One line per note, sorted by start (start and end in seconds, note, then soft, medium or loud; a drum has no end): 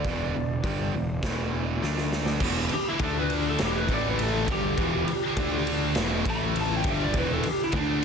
0.00 1.79 D5 medium
0.05 0.33 E1 medium
0.05 0.33 E2 medium
0.05 0.34 B2 loud
0.05 0.34 E3 loud
0.05 kick loud
0.05 open hi-hat soft
0.35 0.63 E1 medium
0.35 0.58 E2 medium
0.35 0.59 B2 medium
0.64 0.92 G1 medium
0.64 0.93 G2 medium
0.64 0.93 D3 medium
0.64 0.93 G3 medium
0.64 kick medium
0.64 open hi-hat soft
0.93 1.21 E1 medium
0.93 1.17 E2 medium
0.93 1.18 B2 medium
1.23 1.78 E1 medium
1.23 1.82 E2 medium
1.23 1.82 B2 medium
1.23 1.82 E3 medium
1.23 kick loud
1.23 snare loud
1.23 open hi-hat medium
1.82 2.38 D2 medium
1.82 2.41 D3 medium
1.82 2.41 A3 medium
1.82 2.41 D4 medium
1.82 snare medium
1.98 snare medium
2.12 snare medium
2.26 snare medium
2.40 2.69 E1 medium
2.40 2.70 E2 medium
2.40 2.71 B2 loud
2.40 2.71 E3 loud
2.40 kick loud
2.40 crash loud
2.69 muted overdriven electric guitar stroke medium
2.69 muted distorted electric guitar stroke medium
2.69 muted picked electric bass stroke soft
2.69 ride medium
2.74 2.87 G4 medium
2.88 3.02 E4 medium
2.99 3.56 D2 medium
2.99 3.59 D3 loud
2.99 3.59 A3 loud
2.99 3.59 D4 loud
2.99 kick loud
2.99 ride loud
3.03 3.17 A4 loud
3.19 3.33 B4 medium
3.30 3.46 A#4 medium
3.30 ride medium
3.49 3.62 A4 medium
3.58 3.88 E1 medium
3.58 3.88 E2 medium
3.58 3.87 B2 loud
3.58 3.86 E3 loud
3.58 snare loud
3.58 ride loud
3.65 3.77 G4 medium
3.77 3.91 B4 medium
3.87 4.45 A1 medium
3.87 4.47 A2 medium
3.87 4.47 E3 medium
3.87 4.47 A3 loud
3.87 kick loud
3.87 ride medium
3.94 4.09 D5 medium
4.09 4.22 B4 medium
4.19 4.50 A4 medium
4.19 ride loud
4.47 4.76 G1 medium
4.47 4.77 G2 loud
4.47 4.78 D3 medium
4.47 4.78 G3 loud
4.47 kick loud
4.47 ride medium
4.52 5.66 G4 medium
4.77 5.06 E1 medium
4.77 5.06 E2 medium
4.77 5.08 B2 loud
4.77 5.07 E3 loud
4.77 kick loud
4.77 ride loud
5.07 muted overdriven electric guitar stroke medium
5.07 muted picked electric bass stroke soft
5.07 muted distorted electric guitar stroke medium
5.07 ride medium
5.37 5.93 D2 medium
5.37 5.95 D3 medium
5.37 5.95 A3 loud
5.37 5.96 D4 loud
5.37 kick loud
5.37 ride loud
5.67 ride medium
5.95 6.24 E1 loud
5.95 6.25 E2 medium
5.95 6.24 B2 loud
5.95 6.24 E3 loud
5.95 snare loud
5.95 ride loud
6.25 6.82 A1 medium
6.25 6.84 A2 loud
6.25 6.84 E3 loud
6.25 6.85 A3 loud
6.25 kick loud
6.25 ride medium
6.30 6.57 B5 loud
6.56 ride loud
6.61 6.73 A5 loud
6.76 6.90 G5 medium
6.84 7.13 G1 medium
6.84 7.14 G2 medium
6.84 7.14 D3 loud
6.84 7.14 G3 loud
6.84 kick loud
6.84 ride medium
6.90 7.03 E5 medium
7.04 7.17 D5 medium
7.14 7.42 E1 medium
7.14 7.44 E2 loud
7.14 7.44 B2 loud
7.14 7.44 E3 loud
7.14 kick loud
7.14 ride loud
7.18 7.31 B4 medium
7.33 7.49 A4 loud
7.43 muted overdriven electric guitar stroke medium
7.43 muted picked electric bass stroke soft
7.43 muted distorted electric guitar stroke medium
7.43 ride medium
7.49 7.62 G4 loud
7.64 7.79 E4 medium
7.72 8.05 D2 loud
7.72 8.05 D3 medium
7.72 8.05 A3 loud
7.72 8.05 D4 loud
7.72 kick loud
7.72 ride loud
7.79 8.05 D4 medium